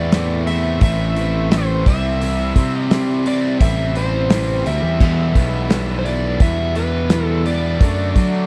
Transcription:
Already playing: E2 A2 E3 A3 C4 E4 D5
0.12 A2 E3 A3 C4 E4, snare, open hi-hat
0.46 A2 E3 A3 C4 E4 E5, open hi-hat
0.81 A1 A2 E3 A3 C4 E4 E5, kick, open hi-hat
1.16 A2 E3 A3 C4 E4, open hi-hat
1.51 A2 E3 A3 C4 E4 C5, snare, open hi-hat
1.86 C2 C3 E3 G3 C4 E4 E5, kick, open hi-hat
2.20 C3 E3 G3 C4 E4, open hi-hat
2.55 C3 E3 G3 C4 E4, kick, open hi-hat
2.60 G3
2.83 D5
2.90 C3 E3 G3 C4 E4, snare, open hi-hat
3.25 C3 E3 G3 C4 E4 D5, open hi-hat
3.60 A1 C3 E3 G3 C4 E4 E5, kick, open hi-hat
3.95 C3 E3 G3 C4 E4 C5, open hi-hat
4.30 C3 E3 G3 C4 E4, snare, open hi-hat
4.65 D2 C3 E3 G3 C4 E4 E5, open hi-hat
4.83 E2
5.00 E2 B2 E3 G3 B3 E4, kick, crash
5.35 B1 E2 B2 E3 G3 B3 E4, kick, open hi-hat
5.40 E3 G3
5.70 E2 B2 E3 G3 B3 E4, snare, open hi-hat
5.99 C5
6.04 E2 B2 E3 G3 B3 E4 D5, open hi-hat
6.10 E3
6.39 E2 B2 E3 G3 B3 E4 E5, kick, open hi-hat
6.75 E2 B2 E3 G3 B3 E4 B4, open hi-hat
7.10 E2 B2 E3 G3 B3 E4, snare, open hi-hat
7.25 A4
7.44 E2 B2 E3 G3 B3 E4 D5, open hi-hat
7.49 E3 G3
7.80 F#2 D3 F#3 A3 D4 F#4, kick, open hi-hat
8.15 D3 F#3 A3 D4 F#4, kick, open hi-hat

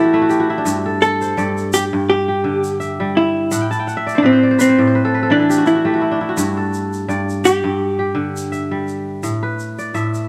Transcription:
Already playing: A2 E3 E4 G4 A4 B4 C5 D5
0.04 F#4
0.13 A3 E4
0.22 F#4
0.29 G4, shaker
0.40 F#4
0.50 E4
0.58 D4
0.65 G2, shaker
0.86 A4
1.02 A4, shaker
1.22 C5, shaker
1.37 G2 D5, shaker
1.58 shaker
1.73 G4, shaker
1.93 G2
2.10 G4
2.28 G4
2.44 D3
2.64 shaker
2.80 E5, shaker
3.00 G3
3.17 E4
3.51 A2 F#5, shaker
3.61 G5
3.71 A5, shaker
3.79 G5
3.87 F#5, shaker
3.97 E5
4.06 D5, shaker
4.15 D4 C5
4.23 A2 C4 B4
4.32 C5
4.43 D5
4.51 C5
4.59 C4 B4, shaker
4.69 C5
4.79 A2 D5
4.87 C5
4.95 B4
5.05 A4
5.14 B4
5.23 A4
5.30 E3 D4 B4
5.40 A4
5.49 G4, shaker
5.58 F#4
5.66 E4, shaker
5.75 F#4
5.85 A3 G4
5.94 F#4
6.01 E4
6.11 D4
6.21 E4
6.29 F#4
6.37 G2, shaker
6.57 A4
6.74 shaker
6.93 shaker
7.08 G2 D5, shaker
7.29 shaker
7.44 G4, shaker
7.64 G2
7.99 G4
8.15 D3
8.37 shaker
8.52 E5, shaker
8.71 G3
8.88 shaker
9.23 A2, shaker
9.43 B4
9.59 shaker
9.79 D5, shaker
9.94 A2 E5, shaker
10.14 shaker

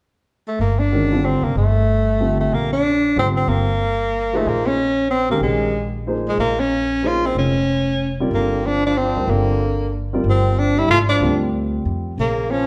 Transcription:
0.48 A3
0.59 G1 A#3
0.79 D4
0.92 D#3 G#3 C#4 F#4 A#4
1.12 D3 G3 C4 F4 A4
1.25 C4
1.42 F1 A#3
1.55 G1 A3
2.20 D3 G3 C4 F4 A4
2.40 A3
2.52 A#1 A#3
2.73 D4
3.16 G#1 D3 G3 C4 F4 A4
3.37 C4
3.47 G1 A#3
4.33 F3 A3 A#3 D#4 G#4 C5
4.46 A#1 A#3
4.67 C#4
5.10 C4
5.29 D#3 G#3 A#3 C#4 G4 A#4
5.41 A#1 G#3
6.07 F3 A#3 D#4 G#4 C5
6.28 G#3
6.38 A#1 A#3
6.60 C#4
7.03 F3 A#3 D#4 G#4 C5
7.07 F4
7.26 C4
7.35 F1 C#4
8.20 G3 C4 F4 A#4 D5
8.31 G1 D3 A#3
8.66 F3 D4
8.86 F3 D4
8.98 F3 C4
9.15 D2 G3 C4 F4 A#4 D5
9.28 G1 D3 A#3
10.13 G3 C4 F4 A#4 D5
10.24 G1 F3
10.30 C4
10.59 F3 D4
10.77 G3 E4
10.88 G#1 A3 F4
11.09 F3 D4
11.21 D2 G3 C4 F4 A#4 D5
11.85 F2
12.18 A#1 C#3 A#3
12.50 F3 C#4

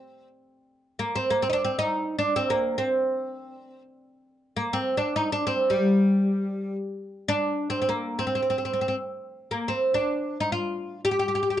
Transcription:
Already playing: C4
0.99 A#3
1.15 C4
1.30 A#3
1.42 C4
1.50 D4 D#4
1.65 C4
1.79 D#4
2.19 D4
2.36 C4
2.50 A#3
2.78 C4
4.57 A#3
4.73 C4
4.97 D4
5.16 D#4
5.32 D4
5.47 C4
5.70 G3
7.28 D4
7.70 C4
7.82 C4
7.89 A#3
8.19 C4
8.27 C4
8.35 C4
8.43 C4
8.50 C4
8.58 C4
8.65 C4
8.73 C4
8.81 C4
8.88 C4
9.51 A#3
9.68 C4
9.94 D4
10.40 D#4
10.52 F4
11.05 G4
11.11 G4
11.19 G4
11.28 G4
11.35 G4
11.43 G4
11.50 G4

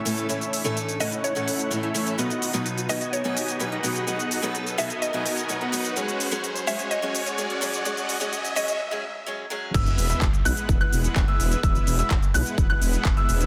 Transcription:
Already playing: A3 C#4 E4 C#5 E5, riser
0.05 A2 E3 A3 C#4 A4, open hi-hat, shaker
0.18 closed hi-hat, shaker
0.29 A2 E3 A3 C#4 E4 A4 C#5 E5, closed hi-hat, shaker
0.41 closed hi-hat, shaker
0.53 open hi-hat, shaker
0.64 A2 E3 A3 C#4 E4 A4 C#5 E5, closed hi-hat, shaker
0.77 closed hi-hat, shaker
0.89 closed hi-hat, shaker
1.00 A2 E3 A3 C#4 E4 A4 C#5 D#5 F#5, open hi-hat, shaker
1.12 closed hi-hat, shaker
1.24 C#5, closed hi-hat, shaker
1.35 A2 E3 A3 C#4 E4 A4 C#5 F#5, closed hi-hat, shaker
1.48 open hi-hat, shaker
1.59 closed hi-hat, shaker
1.71 A2 E3 A3 C#4 A4, closed hi-hat, shaker
1.83 A3 C#4 E4 C#5 E5, closed hi-hat
1.94 E3 A3 C#4 A4, open hi-hat, shaker
2.07 closed hi-hat, shaker
2.18 B2 F#3 B3 D#4 F#4 B4 D#5 F#5, closed hi-hat, shaker
2.30 closed hi-hat, shaker
2.42 open hi-hat, shaker
2.53 B2 F#3 B3 D#4 F#4 B4 D#5 F#5, closed hi-hat, shaker
2.66 closed hi-hat, shaker
2.78 closed hi-hat, shaker
2.89 B2 F#3 B3 D#4 F#4 B4 D#5 G#5, open hi-hat, shaker
3.01 closed hi-hat, shaker
3.13 C#5, closed hi-hat, shaker
3.24 B2 F#3 B3 D#4 F#4 B4 D#5 G#5, closed hi-hat
3.37 open hi-hat, shaker
3.48 closed hi-hat, shaker
3.60 B2 F#3 B3 D#4 B4, closed hi-hat, shaker
3.72 B3 D#4 F#4 D#5 F#5, closed hi-hat
3.83 B2 F#3 B3 D#4 B4, open hi-hat, shaker
3.96 closed hi-hat, shaker
4.07 B2 F#3 B3 D#4 F#4 B4 D#5 F#5, closed hi-hat, shaker
4.19 closed hi-hat, shaker
4.31 open hi-hat, shaker
4.42 B2 F#3 B3 D#4 F#4 B4 D#5 F#5, closed hi-hat, shaker
4.55 closed hi-hat, shaker
4.67 closed hi-hat, shaker
4.78 B2 F#3 B3 D#4 F#4 B4 D#5 E5 G#5, open hi-hat, shaker
4.90 closed hi-hat, shaker
5.02 D#5, closed hi-hat, shaker
5.13 B2 F#3 B3 D#4 F#4 B4 D#5 G#5, closed hi-hat
5.26 open hi-hat, shaker
5.37 closed hi-hat, shaker
5.48 B2 F#3 B3 D#4 B4, closed hi-hat, shaker
5.61 B3 D#4 F#4 D#5 F#5, closed hi-hat
5.72 F#3 B3 D#4 B4, open hi-hat, shaker
5.85 closed hi-hat, shaker
5.96 F#3 G#3 C#4 F#4 G#4 C#5 F#5, closed hi-hat, shaker
6.08 closed hi-hat, shaker
6.20 open hi-hat, shaker
6.31 F#3 G#3 C#4 F#4 G#4 C#5 F#5, closed hi-hat, shaker
6.44 closed hi-hat, shaker
6.56 closed hi-hat, shaker
6.67 F#3 G#3 C#4 F#4 G#4 C#5 E5 G#5, open hi-hat, shaker
6.79 closed hi-hat, shaker
6.91 D#5, closed hi-hat, shaker
7.02 F#3 G#3 C#4 F#4 G#4 C#5 G#5, closed hi-hat
7.15 open hi-hat, shaker
7.26 closed hi-hat, shaker
7.38 F#3 G#3 C#4 G#4, closed hi-hat, shaker
7.50 G#3 C#4 F#4 C#5 F#5, closed hi-hat
7.61 F#3 G#3 C#4 G#4, open hi-hat, shaker
7.74 closed hi-hat, shaker
7.85 F#3 G#3 C#4 F#4 G#4 C#5 F#5, closed hi-hat, shaker
7.97 closed hi-hat, shaker
8.09 open hi-hat, shaker
8.20 F#3 G#3 C#4 F#4 G#4 C#5 F#5, closed hi-hat, shaker
8.33 closed hi-hat, shaker
8.45 closed hi-hat, shaker
8.56 F#3 G#3 C#4 F#4 G#4 C#5 D#5 G#5, open hi-hat, shaker
8.68 closed hi-hat, shaker
8.91 F#3 G#3 C#4 G#4
9.26 F#3 G#3 C#4 G#4
9.50 F#3 G#3 C#4 G#4
9.74 E1 G#3 B3 E4 B4 E5 E6, kick, closed hi-hat, crash, sub drop, shaker
9.86 closed hi-hat, shaker
9.98 E1, open hi-hat, shaker
10.10 G#3 B3 E4 B4 E5 E6, closed hi-hat, shaker
10.22 E1, kick, clap, closed hi-hat, shaker
10.33 closed hi-hat, shaker
10.45 B1 G#3 B3 E4 B4 F#5 F#6, open hi-hat, shaker
10.57 closed hi-hat, shaker
10.69 E1, kick, closed hi-hat, shaker
10.81 G#3 B3 E4 B4 F#5 F#6, closed hi-hat
10.93 E1, open hi-hat, shaker
11.04 closed hi-hat, shaker
11.16 E1, kick, clap, closed hi-hat, shaker
11.28 G#3 B3 E4 B4 E5 E6, closed hi-hat
11.40 E1, open hi-hat, shaker
11.52 closed hi-hat, shaker
11.63 E1 G#3 B3 E4 B4 E5 E6, kick, closed hi-hat, shaker
11.75 closed hi-hat, shaker
11.87 E1, open hi-hat, shaker
11.99 G#3 B3 E4 B4 E5 E6, closed hi-hat, shaker
12.11 E1, kick, clap, closed hi-hat, shaker
12.22 closed hi-hat, shaker
12.34 B1 G#3 B3 E4 B4 F#5 F#6, open hi-hat, shaker
12.46 closed hi-hat, shaker
12.58 E1, kick, closed hi-hat, shaker
12.70 G#3 B3 E4 B4 F#5 F#6, closed hi-hat
12.81 E1, open hi-hat, shaker
12.93 closed hi-hat, shaker
13.05 E1, kick, clap, closed hi-hat, shaker
13.17 G#3 B3 E4 B4 E5 E6, closed hi-hat
13.29 E1, open hi-hat, shaker
13.41 closed hi-hat, shaker

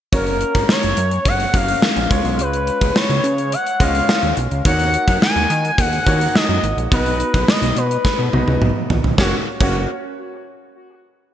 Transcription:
0.12 F#1 A#3 C#4 F#4 A#4 C#5, kick, closed hi-hat
0.27 closed hi-hat
0.41 closed hi-hat
0.55 G#1, kick, closed hi-hat
0.69 C#5, snare
0.83 F#1, closed hi-hat
0.97 F#2, closed hi-hat
1.11 closed hi-hat
1.25 F#1 F#5, kick, closed hi-hat
1.40 closed hi-hat
1.54 F#1 A#3 C#4 F#4 A#4 F5, kick, closed hi-hat
1.68 closed hi-hat
1.82 snare
1.96 A#1, closed hi-hat
2.10 C#2 G#3 C#4 F4 C#5, kick, closed hi-hat
2.25 B1, closed hi-hat
2.39 C#2 B4, closed hi-hat
2.53 closed hi-hat
2.67 closed hi-hat
2.81 C#2, kick, closed hi-hat
2.96 C#5, snare
3.10 C#2, closed hi-hat
3.24 C#3, closed hi-hat
3.38 closed hi-hat
3.52 F#5, closed hi-hat
3.67 closed hi-hat
3.80 C#2 G#3 C#4 F4 D#5 F5, kick, closed hi-hat
3.95 closed hi-hat
4.09 snare
4.23 D#2, closed hi-hat
4.37 B1, closed hi-hat
4.51 C#2, closed hi-hat
4.65 D#2 A#3 D#4 F#4 C#5 F#5, kick, closed hi-hat
4.79 closed hi-hat
4.94 closed hi-hat
5.08 F#2, kick, closed hi-hat
5.22 G#5, snare
5.36 D#2, closed hi-hat
5.50 D#3, closed hi-hat
5.65 closed hi-hat
5.78 D#2 F#5, kick, closed hi-hat
5.93 closed hi-hat
6.06 D#2 A#3 D#4 F#4 C#5, kick, closed hi-hat
6.21 closed hi-hat
6.35 D#5, snare
6.49 F#2, closed hi-hat
6.63 G#1, closed hi-hat
6.77 A#1, closed hi-hat
6.91 B1 B3 D#4 F#4 B4 D#5, kick, closed hi-hat
7.06 closed hi-hat
7.20 closed hi-hat
7.34 B1, kick, closed hi-hat
7.48 D#5, snare
7.62 B1, closed hi-hat
7.76 B2 B4, closed hi-hat
7.91 closed hi-hat
8.05 kick, snare
8.19 B2
8.33 B1 B3 D#4 F#4 D#5, high tom
8.47 C#2, high tom
8.61 B1, mid tom
8.90 A#1, floor tom
9.04 B1, floor tom
9.18 F#1 A#3 C#4 F#4 C#5, kick, snare
9.60 F#1 A#3 C#4 F#4 C#5, kick, crash

